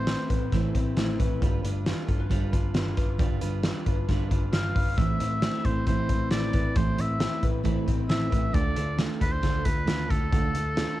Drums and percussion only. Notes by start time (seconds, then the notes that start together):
0.07 snare, closed hi-hat
0.30 kick, closed hi-hat
0.52 kick, snare, closed hi-hat
0.75 kick, closed hi-hat
0.97 snare, closed hi-hat
1.20 kick, closed hi-hat
1.42 kick, closed hi-hat
1.65 closed hi-hat
1.86 snare, closed hi-hat
2.08 kick, closed hi-hat
2.31 kick, closed hi-hat
2.53 kick, closed hi-hat
2.74 snare, closed hi-hat
2.97 kick, closed hi-hat
3.19 kick, closed hi-hat
3.41 closed hi-hat
3.63 snare, closed hi-hat
3.86 kick, closed hi-hat
4.09 kick, snare, closed hi-hat
4.31 kick, closed hi-hat
4.53 snare, closed hi-hat
4.76 kick, open hi-hat
4.98 kick, closed hi-hat
5.20 closed hi-hat
5.42 snare, closed hi-hat
5.65 kick, closed hi-hat
5.87 kick, closed hi-hat
6.09 kick, closed hi-hat
6.31 snare, closed hi-hat
6.54 kick, closed hi-hat
6.76 kick, closed hi-hat
6.99 closed hi-hat
7.20 snare, closed hi-hat
7.43 kick, closed hi-hat
7.65 kick, closed hi-hat
7.88 kick, closed hi-hat
8.10 snare, closed hi-hat
8.32 kick, closed hi-hat
8.54 kick, closed hi-hat
8.76 closed hi-hat
8.99 snare, closed hi-hat
9.21 kick, closed hi-hat
9.43 kick, snare, closed hi-hat
9.65 kick, closed hi-hat
9.87 snare, closed hi-hat
10.10 kick, closed hi-hat
10.32 kick, closed hi-hat
10.55 closed hi-hat
10.77 snare, closed hi-hat